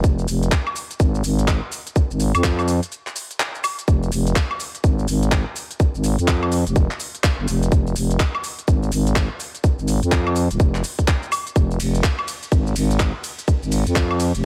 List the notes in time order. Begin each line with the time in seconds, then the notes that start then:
0.04 kick, closed hi-hat, shaker
0.19 shaker
0.28 F1, open hi-hat, shaker
0.43 closed hi-hat, shaker
0.52 kick, clap, closed hi-hat, shaker
0.67 high woodblock
0.76 open hi-hat, shaker
0.91 closed hi-hat, shaker
1.00 G#1, kick, closed hi-hat, shaker
1.15 shaker
1.24 G#1, open hi-hat, shaker
1.39 closed hi-hat, shaker
1.48 kick, clap, closed hi-hat, shaker
1.72 open hi-hat, shaker
1.87 closed hi-hat, shaker
1.96 kick, closed hi-hat, shaker
2.11 G#1, shaker
2.20 open hi-hat, shaker
2.35 F2, closed hi-hat, high woodblock, shaker
2.44 kick, clap, closed hi-hat, shaker
2.59 high woodblock, shaker
2.68 open hi-hat, shaker
2.83 closed hi-hat, shaker
2.92 closed hi-hat, shaker
3.07 clap, shaker
3.16 open hi-hat, shaker
3.31 closed hi-hat, shaker
3.40 clap, closed hi-hat, shaker
3.55 shaker
3.64 open hi-hat, high woodblock, shaker
3.79 closed hi-hat, shaker
3.88 F1, kick, closed hi-hat, shaker
4.03 shaker
4.12 F1, open hi-hat, shaker
4.27 closed hi-hat, shaker
4.36 kick, clap, closed hi-hat, shaker
4.51 high woodblock
4.60 open hi-hat, shaker
4.75 closed hi-hat, shaker
4.84 G#1, kick, closed hi-hat, shaker
4.99 shaker
5.08 G#1, open hi-hat, shaker
5.23 closed hi-hat, shaker
5.32 kick, clap, closed hi-hat, shaker
5.56 open hi-hat, shaker
5.71 closed hi-hat, shaker
5.80 kick, closed hi-hat, shaker
5.95 G#1, shaker
6.04 open hi-hat, shaker
6.19 F2, closed hi-hat, shaker
6.28 kick, clap, closed hi-hat, shaker
6.43 high woodblock
6.52 open hi-hat, shaker
6.67 F1, closed hi-hat, shaker
6.76 kick, closed hi-hat, shaker
6.91 clap, shaker
7.00 open hi-hat, shaker
7.15 closed hi-hat, shaker
7.24 kick, clap, closed hi-hat, shaker
7.39 G1
7.48 F1, open hi-hat, shaker
7.63 closed hi-hat, shaker
7.72 kick, closed hi-hat, shaker
7.87 shaker
7.96 F1, open hi-hat, shaker
8.11 closed hi-hat, shaker
8.20 kick, clap, closed hi-hat, shaker
8.35 high woodblock
8.44 open hi-hat, shaker
8.59 closed hi-hat, shaker
8.68 G#1, kick, closed hi-hat, shaker
8.83 shaker
8.92 G#1, open hi-hat, shaker
9.07 closed hi-hat, shaker
9.16 kick, clap, closed hi-hat, shaker
9.40 open hi-hat, shaker
9.55 closed hi-hat, shaker
9.64 kick, closed hi-hat, shaker
9.79 G#1, shaker
9.88 open hi-hat, shaker
10.03 F2, closed hi-hat, shaker
10.12 kick, clap, closed hi-hat, shaker
10.27 high woodblock
10.36 open hi-hat, shaker
10.51 D#1, closed hi-hat, shaker
10.60 F1, kick, closed hi-hat, shaker
10.75 clap, shaker
10.84 open hi-hat, shaker
10.99 kick, closed hi-hat, shaker
11.08 kick, clap, closed hi-hat, shaker
11.23 shaker
11.32 open hi-hat, high woodblock, shaker
11.47 closed hi-hat, shaker
11.56 F1, kick, closed hi-hat, shaker
11.71 shaker
11.80 F1, open hi-hat, ride, shaker
11.95 closed hi-hat, shaker
12.04 kick, clap, closed hi-hat, shaker
12.19 high woodblock
12.28 open hi-hat, ride, shaker
12.43 closed hi-hat, shaker
12.52 G#1, kick, closed hi-hat, shaker
12.67 shaker
12.76 G#1, open hi-hat, ride, shaker
12.91 closed hi-hat, shaker
13.00 kick, clap, closed hi-hat, shaker
13.24 open hi-hat, ride, shaker
13.39 closed hi-hat, shaker
13.48 kick, closed hi-hat, shaker
13.63 G#1, shaker
13.72 open hi-hat, ride, shaker
13.87 F2, closed hi-hat, shaker
13.96 kick, clap, closed hi-hat, shaker
14.11 high woodblock
14.20 open hi-hat, ride, shaker
14.35 F1, closed hi-hat, shaker